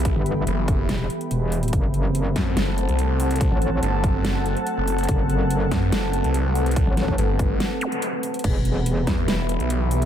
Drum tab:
CC |--------------------------------|--------------------------------|--------------------------------|--------------------------------|
HH |x---x---x---x---x---x-x-x---o-xx|x---x---x---x---x---x-x-x---o-xx|x---x---x---x---x---x-x-x---o-xx|x---x---x---x---x---x-x-x---o-xx|
SD |----------------o---------------|------------o---o---------------|----------------o---------------|------------o---o---------------|
BD |o-----------o-------------------|o-----------o-------------------|o-----------o-------------------|o-----------o-------------------|

CC |--------------------------------|x-------------------------------|
HH |x---x---x---o---x---x-x-x---o-xx|x---x---x---x---x---x-x-x---o-x-|
SD |----o-----------o---------------|------------o---o---------------|
BD |o-----o-----o-------------------|o-----------o-------------------|